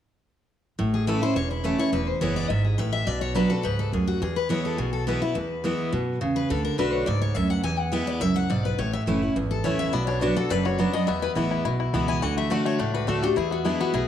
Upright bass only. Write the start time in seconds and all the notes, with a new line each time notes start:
0.79 A1
1.36 E1
1.93 E1
2.21 F#1
2.50 G#1
2.78 A1
3.07 B1
3.64 C#2
3.93 D2
4.22 E2
4.79 B1
5.36 E2
5.93 F#2
6.22 E2
6.50 D2
6.79 B1
7.08 C#2
7.36 D2
7.64 E2
8.21 C#2
8.50 B1
8.79 A1
9.07 F#1
9.36 G#1
9.65 A1
9.93 B1
10.51 F#1
11.08 E2
11.36 A1
11.65 B1
11.93 C#2
12.22 D2
12.80 C#2
13.08 D2
13.37 E2
13.94 B1